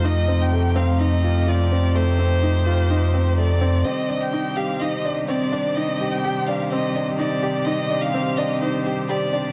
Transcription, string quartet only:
\new Staff \with { instrumentName = "String quartet" } { \clef bass \time 4/4 \key c \dorian \tempo 4 = 126 <c f a ees' g'>1~ | <c f a ees' g'>1 | <c ees g g' c''>1~ | <c ees g g' c''>1~ |
<c ees g g' c''>1 | }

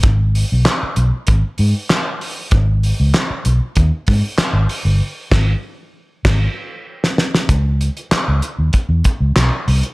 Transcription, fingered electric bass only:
\new Staff \with { instrumentName = "Fingered electric bass" } { \clef bass \time 4/4 \key gis \minor \tempo 4 = 97 gis,,8. b,,16 r8 b,,16 r16 gis,,16 r16 gis,16 r4 r16 | gis,,8. cis,16 r8 b,,16 r16 dis,16 r16 gis,16 r8 gis,,16 r16 g,,16 | r8 gis,,8 r4 gis,,8 r4. | cis,8. r8 cis,16 r16 dis,16 r16 e,16 r16 cis,16 b,,16 r16 bis,,16 r16 | }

